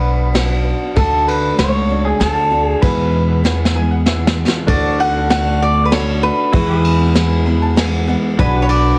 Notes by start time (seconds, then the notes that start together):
Already playing: B1 F#3 B3 D4 F#4 B4
0.34 F#3 B3 D4 F#4, snare, ride
0.96 D2 D3 A3 D4 F#4 A4, kick, ride
1.28 B4, ride
1.58 C#2 A3 D4 F#4 C#5, snare, ride
1.90 A3 D4 F#4
2.05 G#4
2.20 D2 D3 A3 D4 F#4 A4, snare, ride
2.51 A3 D4 F#4
2.65 G#4
2.82 E2 B2 E3 G#3 B3 E4 G#4 B4, kick, ride
3.44 E3 G#3 B3 G#4, snare
3.65 snare
3.75 E3 G#3 B3 G#4 G#5
3.91 F#5
4.06 E3 G#3 B3 G#4 E5, snare
4.27 snare
4.48 snare
4.67 D2 D3 A3 D4 F#4 A4 D5, kick, ride
5.00 F#5, ride
5.30 D3 A3 D4 F#4 F#5, snare, ride
5.62 D5
5.85 B4
5.91 D3 A3 D4 F#4 A4 C#5, snare, ride
6.23 A3 D4 F#4 B4
6.52 E2 B2 E3 G#3 B3 E4 F#4 G#4 B4, kick, ride
6.78 G#4
6.85 ride
7.14 E3 G#3 B3 G#4, snare, ride
7.46 E3 G#3 B3 G#4 B5
7.62 A5
7.76 E3 G#3 B3 G#4 G#5, snare, ride
8.07 E3 G#3 B3 G#4 F#5
8.39 B1 B2 F#3 B3 D4 F#4 G#4 B4, kick, ride
8.62 F#4 C#5
8.69 D5, ride